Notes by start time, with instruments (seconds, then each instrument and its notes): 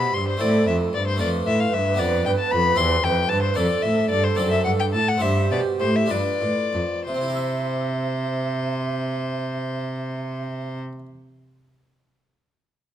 Already playing: harpsichord B2 C4 E4, cello B2, flute G4, violin B5
0.14 cello G2, harpsichord G2, violin C6
0.29 violin C5
0.37 harpsichord A2 A3 C4 E4, flute A4
0.41 cello A2, violin D5
0.67 cello F2, harpsichord F2, violin E5
0.93 harpsichord G2, cello G2, violin D5
1.08 violin C5
1.16 harpsichord A3 D4 F4, flute B4
1.20 cello F2, harpsichord F2, violin D5
1.46 harpsichord A2, cello A2, violin E5
1.60 violin F5
1.73 harpsichord G2, cello G2, violin E5
1.94 harpsichord B3 D4 G4
1.98 harpsichord F2, cello F2, violin D5
2.26 harpsichord G2, cello G2, violin G5
2.39 violin A5
2.51 harpsichord F2, cello F2, violin B5
2.75 harpsichord E2 C4 E4 G4, violin C6
2.79 cello E2
3.04 harpsichord F2, cello F2, violin G5
3.29 cello G2, harpsichord G2, violin A5
3.43 violin C5
3.54 cello F2, harpsichord C4 D4 A4, flute A4, violin D5
3.59 harpsichord F2
3.82 cello A2, harpsichord A2, violin E5
4.10 cello G2, harpsichord G2, violin D5
4.24 violin C5
4.35 cello F#2, harpsichord C4 D4 A4, violin D5
4.39 harpsichord F#2
4.51 violin E5
4.64 harpsichord G2, cello G2, violin F#5
4.79 violin G5
4.94 cello A2, harpsichord A2, violin A5
5.09 violin F#5
5.17 harpsichord C4 G4 C5, flute G4
5.22 harpsichord G2, cello G2, violin E5
5.51 harpsichord B2, cello B2, violin D5
5.80 harpsichord A2, cello A2, violin C5
5.96 violin E5
6.06 harpsichord D4 F4 B4
6.10 harpsichord G2, cello G2, flute B4, violin D5
6.41 harpsichord A2, cello A2
6.73 harpsichord F2, cello F2
7.07 harpsichord C3, cello C3, violin C5, flute E5
7.14 harpsichord C4
7.21 harpsichord E4
7.28 harpsichord G4
7.35 harpsichord E5